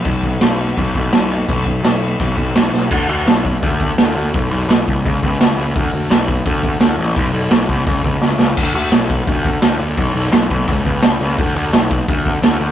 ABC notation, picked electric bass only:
X:1
M:4/4
L:1/8
Q:1/4=170
K:Bmix
V:1 name="Picked electric bass" clef=bass
B,,,2 B,,,2 B,,, B,,, B,,,2 | B,,, B,,, B,,,2 B,,, B,,, B,,, B,,, | =D,, D,, B,,,2 D,,2 D,, D,, | B,,, B,,, B,,, =C,, ^C,, C,, C,, C,, |
=D,, D,, B,,,2 D,,2 D,, A,,, | B,,, B,,, B,,, =C,, ^C,, C,, C,, C,, | =D,, D,, B,,,2 D,,2 D,, D,, | B,,, B,,, B,,, B,,, C,, C,, C,, C,, |
=D,, D,, B,,,2 D,,2 D,, D,, |]